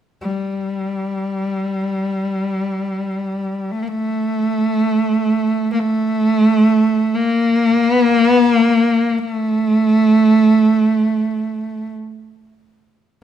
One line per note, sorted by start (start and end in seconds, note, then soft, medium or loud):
0.22 3.73 G3 medium
3.72 3.84 A3 medium
3.82 3.90 A#3 medium
3.88 5.72 A3 medium
5.73 5.81 A#3 medium
5.80 7.16 A3 medium
7.15 7.87 A#3 medium
7.87 8.07 B3 medium
8.07 8.28 A#3 medium
8.28 8.48 B3 medium
8.48 9.19 A#3 medium
9.19 9.31 A#3 medium
9.31 11.92 A3 medium